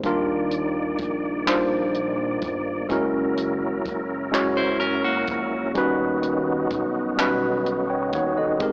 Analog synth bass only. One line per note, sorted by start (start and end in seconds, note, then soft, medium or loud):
0.05 0.95 D#2 loud
1.00 2.38 A#1 loud
2.44 2.86 G1 medium
2.91 3.81 F#1 loud
3.86 5.24 F#1 medium
5.30 5.78 A#1 medium
5.76 6.67 D#2 loud
6.72 8.10 B1 medium
8.14 8.63 D#2 medium
8.62 8.72 G#1 loud